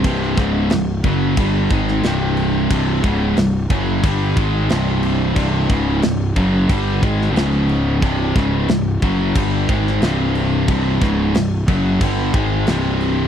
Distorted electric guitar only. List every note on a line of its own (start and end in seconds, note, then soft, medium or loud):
0.05 0.37 C2 medium
0.05 0.37 G2 loud
0.05 0.38 C3 loud
0.38 0.70 C#2 medium
0.38 0.71 G#2 loud
0.38 0.71 C#3 loud
0.72 0.98 C2 medium
0.72 0.99 G2 medium
1.04 1.37 F#2 medium
1.04 1.37 C#3 loud
1.04 1.38 F#3 loud
1.38 1.70 G2 medium
1.38 1.71 D3 loud
1.38 1.71 G3 loud
1.71 2.04 G#2 medium
1.71 2.04 D#3 medium
1.71 2.04 G#3 loud
2.04 2.69 C2 medium
2.04 2.70 G2 loud
2.04 2.71 C3 loud
2.71 3.03 C2 medium
2.71 3.03 G2 loud
2.71 3.04 C3 loud
3.03 3.36 C#2 loud
3.03 3.36 G#2 loud
3.03 3.37 C#3 loud
3.38 3.64 C2 medium
3.38 3.64 G2 medium
3.70 4.03 F#2 medium
3.70 4.03 C#3 medium
3.70 4.03 F#3 loud
4.04 4.36 G2 loud
4.04 4.37 D3 loud
4.04 4.37 G3 loud
4.37 4.69 G#2 medium
4.37 4.70 D#3 medium
4.37 4.70 G#3 loud
4.70 5.35 C2 medium
4.70 5.35 G2 medium
4.70 5.36 C3 loud
5.36 5.69 C2 medium
5.36 5.69 G2 loud
5.36 5.69 C3 medium
5.69 6.02 C#2 medium
5.69 6.02 G#2 loud
5.69 6.03 C#3 loud
6.03 6.30 C2 medium
6.03 6.30 G2 medium
6.36 6.69 F#2 medium
6.36 6.69 C#3 loud
6.36 6.69 F#3 loud
6.69 7.02 G2 medium
6.69 7.02 D3 loud
6.69 7.03 G3 loud
7.03 7.36 G#2 medium
7.03 7.37 D#3 loud
7.03 7.38 G#3 loud
7.36 8.02 C#2 loud
7.36 8.02 G#2 medium
7.36 8.02 C#3 loud
8.02 8.35 C2 medium
8.02 8.35 G2 medium
8.02 8.35 C3 loud
8.35 8.68 C#2 medium
8.35 8.68 G#2 loud
8.35 8.68 C#3 loud
8.69 8.96 C2 medium
8.69 8.96 G2 medium
9.02 9.35 F#2 loud
9.02 9.35 C#3 medium
9.02 9.35 F#3 loud
9.36 9.68 G2 loud
9.36 9.68 D3 loud
9.36 9.69 G3 loud
9.69 10.01 G#2 loud
9.69 10.02 D#3 medium
9.69 10.02 G#3 loud
10.03 10.67 C2 medium
10.03 10.68 G2 loud
10.03 10.68 C3 loud
10.69 11.01 C2 medium
10.69 11.01 G2 loud
10.69 11.02 C3 medium
11.02 11.34 C#2 loud
11.02 11.34 G#2 loud
11.02 11.35 C#3 loud
11.36 11.62 C2 medium
11.36 11.62 G2 medium
11.68 12.00 F#2 loud
11.68 12.01 C#3 medium
11.68 12.01 F#3 loud
12.02 12.34 G2 medium
12.02 12.34 D3 loud
12.02 12.34 G3 medium
12.34 12.66 G#2 medium
12.34 12.67 D#3 medium
12.34 12.67 G#3 loud
12.68 13.28 C2 medium
12.68 13.28 G2 loud
12.68 13.28 C3 loud